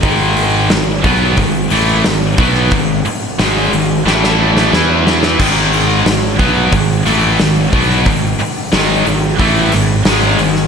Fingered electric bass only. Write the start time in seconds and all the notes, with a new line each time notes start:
0.03 G#1
0.72 G#1
1.04 B1
1.38 G#1
1.72 A1
2.06 G#1
2.38 B1
2.72 G#1
3.07 muted fingered electric bass stroke
3.40 G#1
3.73 G#1
4.06 A1
4.73 E2
5.40 G#1
6.06 G#1
6.39 B1
6.73 G#1
7.07 A1
7.40 G#1
7.73 B1
8.06 G#1
8.40 muted fingered electric bass stroke
8.73 G#1
9.07 G#1
9.40 A1
9.74 G#1
10.06 G#1
10.40 G#1